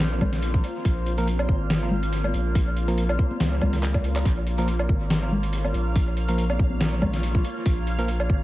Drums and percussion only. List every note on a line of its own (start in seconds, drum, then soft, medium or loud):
0.21 kick medium
0.21 high conga medium
0.21 low conga medium
0.21 low woodblock medium
0.33 snare soft
0.33 closed hi-hat medium
0.42 closed hi-hat medium
0.54 kick loud
0.64 closed hi-hat medium
0.85 kick loud
0.85 closed hi-hat medium
1.06 closed hi-hat soft
1.18 closed hi-hat medium
1.28 closed hi-hat medium
1.39 low woodblock medium
1.49 kick loud
1.70 snare loud
1.70 closed hi-hat medium
1.91 low conga loud
2.03 closed hi-hat medium
2.13 closed hi-hat medium
2.24 high conga medium
2.24 low woodblock medium
2.34 closed hi-hat medium
2.55 kick loud
2.55 closed hi-hat medium
2.76 closed hi-hat medium
2.88 closed hi-hat medium
2.98 closed hi-hat medium
3.09 high conga medium
3.09 low woodblock medium
3.19 kick loud
3.31 high conga medium
3.40 snare loud
3.40 closed hi-hat medium
3.61 kick medium
3.61 high conga medium
3.61 low conga loud
3.61 low woodblock medium
3.73 snare soft
3.73 closed hi-hat medium
3.83 clap loud
3.83 closed hi-hat medium
3.94 kick loud
3.94 low woodblock medium
4.04 closed hi-hat medium
4.16 clap medium
4.16 low woodblock medium
4.25 kick loud
4.25 closed hi-hat medium
4.47 closed hi-hat medium
4.58 closed hi-hat medium
4.68 closed hi-hat medium
4.79 low woodblock medium
4.89 kick loud
5.10 snare loud
5.10 closed hi-hat medium
5.32 low conga medium
5.43 closed hi-hat medium
5.53 closed hi-hat medium
5.64 high conga medium
5.64 low woodblock medium
5.74 closed hi-hat medium
5.96 kick loud
5.96 closed hi-hat medium
6.17 closed hi-hat medium
6.28 closed hi-hat medium
6.38 closed hi-hat medium
6.49 high conga medium
6.49 low woodblock medium
6.59 kick loud
6.70 high conga medium
6.81 snare loud
6.81 closed hi-hat medium
7.02 kick medium
7.02 high conga medium
7.02 low conga loud
7.02 low woodblock medium
7.14 snare soft
7.14 closed hi-hat medium
7.23 closed hi-hat medium
7.35 kick loud
7.45 closed hi-hat medium
7.66 kick loud
7.66 closed hi-hat medium
7.87 closed hi-hat medium
7.99 closed hi-hat medium
8.08 closed hi-hat medium
8.20 low woodblock medium
8.30 kick loud